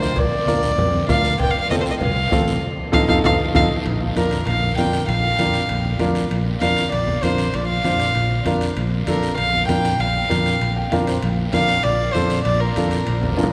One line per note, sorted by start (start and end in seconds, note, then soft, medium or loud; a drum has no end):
0.00 0.11 D2 medium
0.00 0.20 C5 medium
0.00 bombo rim medium
0.00 short guiro medium
0.16 0.29 A#1 medium
0.16 1.09 D5 loud
0.16 bombo low medium
0.16 cowbell loud
0.16 long guiro medium
0.47 0.69 D4 medium
0.47 0.69 F4 medium
0.47 0.70 A#4 medium
0.47 bombo rim medium
0.47 high conga medium
0.47 short guiro medium
0.63 short guiro medium
0.78 1.03 F2 medium
0.78 cowbell medium
0.78 low conga medium
0.78 long guiro medium
0.94 high conga medium
1.08 1.34 D2 medium
1.08 1.30 D4 medium
1.08 1.30 F4 medium
1.08 1.31 A#4 medium
1.08 1.38 F5 medium
1.08 bombo low medium
1.08 bombo rim medium
1.08 high conga medium
1.08 short guiro medium
1.25 short guiro medium
1.39 1.52 F1 medium
1.39 1.52 G5 loud
1.39 bombo low medium
1.39 cowbell loud
1.39 long guiro medium
1.51 1.60 F5 medium
1.61 1.70 F5 medium
1.71 1.92 C4 medium
1.71 1.92 F4 medium
1.71 1.93 A4 medium
1.71 1.75 D#5 medium
1.71 bombo rim medium
1.71 high conga medium
1.71 short guiro medium
1.81 1.85 C5 medium
1.86 short guiro medium
1.90 1.95 D#5 medium
2.01 2.26 C2 medium
2.01 2.58 F5 medium
2.01 cowbell medium
2.01 low conga medium
2.01 long guiro medium
2.31 2.57 A1 medium
2.31 2.53 C4 medium
2.31 2.53 F4 medium
2.31 2.54 A4 medium
2.31 bombo low medium
2.31 bombo rim medium
2.31 high conga medium
2.31 short guiro medium
2.48 short guiro medium
2.92 3.05 F2 medium
2.92 3.03 D#4 loud
2.92 3.03 F4 loud
2.92 3.02 A4 medium
2.92 3.03 F5 medium
2.92 bombo low loud
2.92 high conga loud
2.92 high timbale loud
2.92 long guiro loud
3.08 3.20 F2 medium
3.08 3.18 D#4 medium
3.08 3.18 F4 loud
3.08 3.18 A4 loud
3.08 3.19 F5 medium
3.08 bombo low medium
3.08 high conga loud
3.08 high timbale medium
3.08 long guiro loud
3.24 3.36 F2 medium
3.24 3.34 D#4 medium
3.24 3.34 F4 medium
3.24 3.34 A4 medium
3.24 3.35 F5 medium
3.24 bombo low medium
3.24 high conga loud
3.24 high timbale loud
3.24 long guiro loud
3.54 3.67 F2 loud
3.54 3.64 D#4 loud
3.54 3.64 F4 medium
3.54 3.64 A4 medium
3.54 3.65 F5 medium
3.54 bombo low loud
3.54 high conga medium
3.54 high timbale medium
3.54 long guiro loud
3.86 4.10 A#1 loud
3.86 high timbale medium
3.86 long guiro medium
4.16 4.41 F2 medium
4.16 4.37 D4 medium
4.16 4.38 F4 medium
4.16 4.45 A#4 medium
4.16 4.38 A#4 medium
4.16 high conga medium
4.16 high timbale medium
4.16 short guiro medium
4.31 high timbale medium
4.31 short guiro medium
4.47 4.72 A#1 medium
4.47 4.76 F5 medium
4.47 high timbale medium
4.47 long guiro medium
4.78 5.02 F2 medium
4.78 4.99 D4 medium
4.78 4.99 F4 medium
4.78 5.00 A#4 medium
4.78 5.07 G5 medium
4.78 high conga medium
4.78 high timbale medium
4.78 short guiro medium
4.93 high timbale medium
4.93 short guiro medium
5.08 5.33 A#1 loud
5.08 5.97 F5 medium
5.08 high timbale medium
5.08 long guiro medium
5.39 5.63 F2 medium
5.39 5.60 D4 medium
5.39 5.61 F4 medium
5.39 5.61 A#4 medium
5.39 high conga medium
5.39 high timbale medium
5.39 short guiro medium
5.54 high timbale medium
5.54 short guiro medium
5.69 5.95 A#1 medium
5.69 high timbale medium
5.69 long guiro medium
5.85 high conga medium
5.99 6.25 F2 medium
5.99 6.22 D4 medium
5.99 6.22 F4 medium
5.99 6.22 A#4 medium
5.99 high conga medium
5.99 high timbale medium
5.99 low timbale medium
5.99 short guiro medium
6.15 high timbale medium
6.15 short guiro medium
6.31 6.56 A#1 medium
6.31 high timbale medium
6.31 long guiro medium
6.61 6.86 F2 medium
6.61 6.84 D4 medium
6.61 6.84 F4 medium
6.61 6.84 A#4 medium
6.61 6.90 F5 loud
6.61 high conga medium
6.61 high timbale medium
6.61 short guiro medium
6.76 high timbale medium
6.76 short guiro medium
6.92 7.17 A#1 medium
6.92 7.24 D5 medium
6.92 high timbale medium
6.92 long guiro medium
7.07 high conga medium
7.23 7.48 F2 medium
7.23 7.45 D4 medium
7.23 7.45 F4 medium
7.23 7.45 A#4 medium
7.23 7.56 C5 medium
7.23 high conga medium
7.23 high timbale medium
7.23 short guiro medium
7.38 high timbale medium
7.38 short guiro medium
7.54 7.79 A#1 loud
7.54 7.68 D5 medium
7.54 high timbale medium
7.54 long guiro medium
7.68 8.57 F5 medium
7.84 8.10 F2 medium
7.84 8.06 D4 medium
7.84 8.06 F4 medium
7.84 8.07 C5 medium
7.84 high conga medium
7.84 high timbale medium
7.84 short guiro medium
8.00 high timbale medium
8.00 short guiro medium
8.15 8.40 A#1 medium
8.15 high timbale medium
8.15 long guiro medium
8.45 8.71 F2 medium
8.45 8.68 D4 medium
8.45 8.68 F4 medium
8.45 8.68 A#4 medium
8.45 high conga medium
8.45 high timbale medium
8.45 short guiro medium
8.61 high timbale medium
8.61 short guiro medium
8.77 9.02 A#1 loud
8.77 high timbale medium
8.77 long guiro medium
9.07 9.33 F2 medium
9.07 9.29 D4 medium
9.07 9.29 F4 medium
9.07 9.30 A4 medium
9.07 9.36 A#4 medium
9.07 high conga medium
9.07 high timbale medium
9.07 short guiro medium
9.23 high timbale medium
9.23 short guiro medium
9.38 9.63 A#1 medium
9.38 9.67 F5 medium
9.38 high timbale medium
9.38 long guiro medium
9.54 high conga medium
9.68 9.94 F2 medium
9.68 9.90 D4 medium
9.68 9.91 F4 medium
9.68 9.91 A#4 medium
9.68 10.02 G5 medium
9.68 high conga medium
9.68 high timbale medium
9.68 short guiro medium
9.85 high timbale medium
9.85 short guiro medium
9.99 10.24 A#1 medium
9.99 10.92 F5 medium
9.99 high timbale medium
9.99 long guiro medium
10.29 10.56 F2 medium
10.29 10.51 D4 medium
10.29 10.52 F4 medium
10.29 10.52 A#4 medium
10.29 high conga medium
10.29 high timbale medium
10.29 short guiro medium
10.46 high timbale medium
10.46 short guiro medium
10.61 10.86 A#1 medium
10.61 high timbale medium
10.61 long guiro medium
10.76 10.91 G5 medium
10.91 11.17 F2 medium
10.91 11.13 D4 medium
10.91 11.14 F4 medium
10.91 11.14 A#4 medium
10.91 11.06 F5 medium
10.91 high conga medium
10.91 high timbale medium
10.91 short guiro medium
11.07 11.22 C5 medium
11.07 high timbale medium
11.07 short guiro medium
11.22 11.48 A#1 loud
11.22 high timbale medium
11.22 long guiro medium
11.53 11.79 F2 medium
11.53 11.75 D4 medium
11.53 11.75 F4 medium
11.53 11.75 A#4 medium
11.53 11.85 F5 loud
11.53 high conga medium
11.53 high timbale medium
11.53 short guiro medium
11.69 high timbale medium
11.69 short guiro medium
11.83 12.09 A#1 medium
11.83 12.14 D5 loud
11.83 high timbale medium
11.83 long guiro medium
12.13 12.40 F2 medium
12.13 12.37 D4 medium
12.13 12.37 F4 medium
12.13 12.37 A4 medium
12.13 12.43 C5 medium
12.13 high conga medium
12.13 high timbale medium
12.13 short guiro medium
12.30 high timbale medium
12.30 short guiro medium
12.44 12.71 A#1 loud
12.44 12.61 D5 medium
12.44 high timbale medium
12.44 long guiro medium
12.60 13.53 A#4 medium
12.76 13.02 F2 medium
12.76 12.99 D4 medium
12.76 12.99 F4 medium
12.76 12.99 A4 medium
12.76 high conga medium
12.76 high timbale medium
12.76 short guiro medium
12.91 high timbale medium
12.91 short guiro medium
13.07 13.33 A#1 medium
13.07 high timbale medium
13.07 long guiro medium
13.21 high conga medium
13.21 high timbale medium
13.33 low conga medium
13.37 13.53 F2 medium
13.37 13.53 D4 medium
13.37 13.53 F4 medium
13.37 13.53 A#4 medium
13.37 high timbale medium
13.37 short guiro medium
13.43 low conga medium